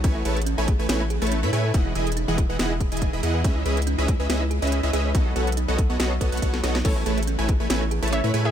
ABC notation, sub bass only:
X:1
M:4/4
L:1/16
Q:"Swing 16ths" 1/4=141
K:Alyd
V:1 name="Sub bass" clef=bass
A,,,2 A,,,3 A,,,2 A,,, A,,,3 A,,,2 A,, A,,2 | E,,,2 E,,,3 E,,,2 E,,, E,,,3 E,,,2 E,,, E,,2 | C,,2 C,,3 C,,2 C,, C,,3 C,,2 C,, C,,2 | B,,,2 B,,,3 B,,,2 B,,, B,,,2 B,,, B,,, B,,,2 B,,,2 |
A,,,2 A,,,3 A,,,2 A,,, A,,,3 A,,,2 A,, A,,2 |]